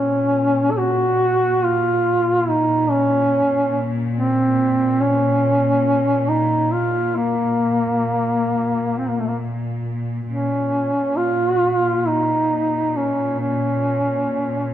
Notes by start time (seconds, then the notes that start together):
Already playing: A#2 C#4
0.71 A4
0.78 F#4
1.65 F4
2.49 D#4
2.91 C#4
4.18 C4
5.01 C#4
6.29 D#4
6.73 F4
7.16 A#3
8.98 C4
9.08 A#3
9.18 A3
9.27 A#3
10.28 A#2 C#4
11.17 F4
12.07 D#4
12.96 C#4
13.39 C#4